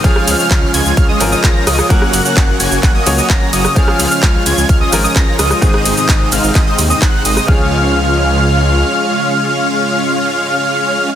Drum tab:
RD |x-x-x-x-x-x-x-x-|x-x-x-x-x-x-x-x-|x-x-x-x-x-x-x-x-|x-x-x-x-x-x-x-x-|
HH |--o---o---o---o-|--o---o---o---o-|--o---o---o---o-|--o---o---o---o-|
SH |x-xxx-xxx-xxx-xx|x-xxx-xxx-xxx-xx|x-xxx-xxx-xxx-xx|x-xxx-xxx-xxx-xx|
CP |----x-------x---|----x---x---x---|----x-------x---|----x---x---x---|
SD |-r------------rr|-r-------------r|-r------------rr|-r-------------r|
BD |o---o---o---o---|o---o---o---o---|o---o---o---o---|o---o---o---o---|

RD |----------------|----------------|
HH |----------------|----------------|
SH |----------------|----------------|
CP |----------------|----------------|
SD |----------------|----------------|
BD |o---------------|----------------|